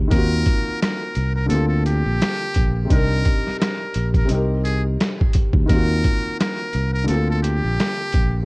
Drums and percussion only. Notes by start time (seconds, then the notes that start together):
0.11 kick, closed hi-hat
0.46 kick, closed hi-hat
0.82 cross-stick, snare, closed hi-hat
1.15 closed hi-hat
1.50 closed hi-hat
1.86 closed hi-hat
2.22 cross-stick, snare, closed hi-hat
2.54 kick, closed hi-hat
2.90 kick, closed hi-hat
3.25 kick, closed hi-hat
3.47 snare
3.61 cross-stick, snare, closed hi-hat
3.94 closed hi-hat
4.14 kick, closed hi-hat
4.29 closed hi-hat
4.65 closed hi-hat
5.01 cross-stick, snare, closed hi-hat
5.21 kick
5.33 kick, closed hi-hat
5.53 kick
5.69 kick, closed hi-hat
6.04 kick, closed hi-hat
6.40 cross-stick, snare, closed hi-hat
6.73 closed hi-hat
7.08 closed hi-hat
7.44 closed hi-hat
7.80 cross-stick, snare, closed hi-hat
8.13 kick, closed hi-hat